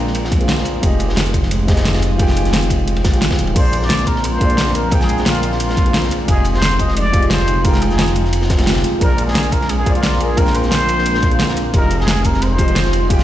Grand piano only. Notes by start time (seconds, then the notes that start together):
Already playing: A#3 F4 G#4 C5 D5 G5
0.38 A#3 F4 G#4
0.42 C5 F5
0.80 F3 F4 G4
0.84 G#4 D#5
1.65 F3 F4 G4
1.70 G#4 D#5
2.16 F3 F4 G4
2.21 G#4 G5
3.11 F3 F4 G4
3.15 G#4 G5
3.53 A#3 F4 G#4
3.58 C5 D5
4.38 A#3 F4 G#4
4.43 C5 D5
4.89 A#3 F4 G#4
4.94 C5 G5
5.83 A#3 F4 G#4
5.88 C5 F5
6.26 F3 F4 G4
6.30 G#4 D#5
7.11 F3 F4 G4
7.16 G#4 D#5
7.62 F3 D#4 F4
7.67 G#4 G5
8.56 F3 F4 G4
8.61 G#4 G5
8.99 A#3 F4 G#4
9.03 C5 D5
9.84 A#3 F4 G#4
9.88 C5 D5
10.35 A#3 F4 G#4
10.39 C5 G5
11.29 A#3 F4 G#4
11.33 C5 F5
11.71 F3 F4 G4
11.76 G#4 D#5
12.56 F3 F4 G4
12.61 G#4 D#5
13.07 F3 F4 G4
13.12 G#4 G5